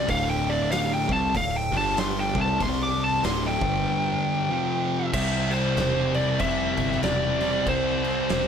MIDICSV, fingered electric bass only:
0, 0, Header, 1, 2, 480
1, 0, Start_track
1, 0, Tempo, 632244
1, 68, Time_signature, 4, 2, 24, 8
1, 6435, End_track
2, 0, Start_track
2, 0, Title_t, "Fingered electric bass"
2, 0, Program_c, 0, 33
2, 67, Note_on_c, 0, 26, 89
2, 799, Note_off_c, 0, 26, 0
2, 828, Note_on_c, 0, 36, 102
2, 1009, Note_off_c, 0, 36, 0
2, 1022, Note_on_c, 0, 26, 85
2, 1288, Note_off_c, 0, 26, 0
2, 1302, Note_on_c, 0, 31, 101
2, 1753, Note_off_c, 0, 31, 0
2, 1784, Note_on_c, 0, 36, 90
2, 1965, Note_off_c, 0, 36, 0
2, 1980, Note_on_c, 0, 36, 98
2, 2429, Note_off_c, 0, 36, 0
2, 2460, Note_on_c, 0, 26, 108
2, 2726, Note_off_c, 0, 26, 0
2, 2748, Note_on_c, 0, 31, 104
2, 2927, Note_off_c, 0, 31, 0
2, 3896, Note_on_c, 0, 36, 96
2, 4348, Note_off_c, 0, 36, 0
2, 4378, Note_on_c, 0, 28, 92
2, 4830, Note_off_c, 0, 28, 0
2, 4861, Note_on_c, 0, 29, 90
2, 5125, Note_off_c, 0, 29, 0
2, 5146, Note_on_c, 0, 31, 86
2, 5326, Note_off_c, 0, 31, 0
2, 5334, Note_on_c, 0, 28, 93
2, 5789, Note_off_c, 0, 28, 0
2, 5819, Note_on_c, 0, 36, 84
2, 6272, Note_off_c, 0, 36, 0
2, 6303, Note_on_c, 0, 28, 95
2, 6435, Note_off_c, 0, 28, 0
2, 6435, End_track
0, 0, End_of_file